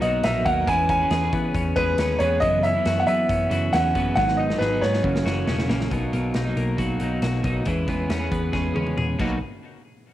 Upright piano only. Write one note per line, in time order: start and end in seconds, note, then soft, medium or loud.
0.01 0.24 D#5 medium
0.24 0.46 E5 medium
0.45 0.68 F#5 loud
0.68 0.88 G#5 loud
0.90 1.30 G#5 loud
1.76 2.21 B4 loud
2.19 2.42 C#5 medium
2.40 2.64 D#5 loud
2.63 3.01 E5 loud
3.00 3.07 F#5 medium
3.07 3.75 E5 loud
3.73 4.14 F#5 loud
4.15 4.39 F#5 loud
4.37 4.58 D#5 medium
4.58 4.82 B4 medium
4.81 5.65 C#5 medium